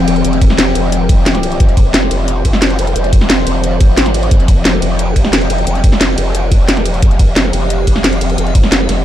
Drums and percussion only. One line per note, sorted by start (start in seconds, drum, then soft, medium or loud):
0.08 closed hi-hat medium
0.08 ride bell medium
0.16 closed hi-hat soft
0.25 closed hi-hat loud
0.33 closed hi-hat soft
0.41 kick loud
0.41 closed hi-hat medium
0.41 ride bell medium
0.50 snare medium
0.58 snare loud
0.58 closed hi-hat loud
0.75 closed hi-hat medium
0.75 ride bell medium
0.92 closed hi-hat loud
1.09 kick loud
1.09 closed hi-hat medium
1.09 ride bell medium
1.26 snare loud
1.26 closed hi-hat loud
1.35 snare medium
1.35 closed hi-hat soft
1.43 closed hi-hat medium
1.43 ride bell medium
1.52 closed hi-hat soft
1.60 kick loud
1.60 closed hi-hat medium
1.69 closed hi-hat soft
1.77 kick loud
1.77 closed hi-hat medium
1.77 ride bell medium
1.94 snare loud
1.94 closed hi-hat medium
2.03 snare soft
2.11 closed hi-hat medium
2.11 ride bell medium
2.28 closed hi-hat medium
2.45 kick medium
2.45 closed hi-hat medium
2.45 ride bell medium
2.53 snare medium
2.62 snare loud
2.62 closed hi-hat medium
2.70 closed hi-hat soft
2.79 closed hi-hat medium
2.79 ride bell medium
2.87 closed hi-hat soft
2.96 closed hi-hat medium
3.04 closed hi-hat soft
3.13 kick loud
3.13 closed hi-hat medium
3.13 ride bell medium
3.21 snare medium
3.30 snare loud
3.30 closed hi-hat medium
3.47 closed hi-hat medium
3.47 ride bell medium
3.64 closed hi-hat medium
3.80 kick loud
3.80 closed hi-hat medium
3.80 ride bell medium
3.97 snare loud
3.97 closed hi-hat medium
4.06 snare soft
4.06 closed hi-hat soft
4.14 closed hi-hat medium
4.14 ride bell medium
4.23 closed hi-hat soft
4.31 kick loud
4.31 closed hi-hat medium
4.40 closed hi-hat soft
4.48 kick loud
4.48 closed hi-hat medium
4.48 ride bell medium
4.65 snare loud
4.65 closed hi-hat medium
4.74 snare soft
4.82 closed hi-hat medium
4.82 ride bell medium
4.99 closed hi-hat medium
5.16 kick medium
5.16 closed hi-hat medium
5.16 ride bell medium
5.25 snare medium
5.33 snare loud
5.33 closed hi-hat medium
5.41 closed hi-hat soft
5.50 closed hi-hat medium
5.50 ride bell medium
5.58 closed hi-hat soft
5.67 closed hi-hat medium
5.75 closed hi-hat soft
5.84 kick loud
5.84 closed hi-hat medium
5.84 ride bell medium
5.92 snare medium
6.01 snare loud
6.01 closed hi-hat medium
6.18 closed hi-hat medium
6.18 ride bell medium
6.35 closed hi-hat loud
6.52 kick loud
6.52 closed hi-hat medium
6.52 ride bell medium
6.69 snare loud
6.69 closed hi-hat medium
6.77 snare soft
6.77 closed hi-hat soft
6.86 closed hi-hat medium
6.86 ride bell medium
6.94 closed hi-hat soft
7.02 kick loud
7.02 closed hi-hat loud
7.11 closed hi-hat soft
7.19 kick loud
7.19 closed hi-hat medium
7.19 ride bell medium
7.36 snare loud
7.36 closed hi-hat loud
7.45 snare soft
7.53 closed hi-hat medium
7.53 ride bell medium
7.70 closed hi-hat loud
7.87 kick medium
7.87 closed hi-hat medium
7.87 ride bell medium
7.96 snare medium
8.04 snare loud
8.04 closed hi-hat loud
8.13 closed hi-hat soft
8.21 closed hi-hat medium
8.21 ride bell medium
8.30 closed hi-hat soft
8.38 closed hi-hat loud
8.47 closed hi-hat soft
8.55 kick loud
8.55 closed hi-hat medium
8.55 ride bell medium
8.63 snare medium
8.72 snare loud
8.72 closed hi-hat loud
8.80 snare soft
8.89 snare soft
8.89 closed hi-hat medium
8.89 ride bell medium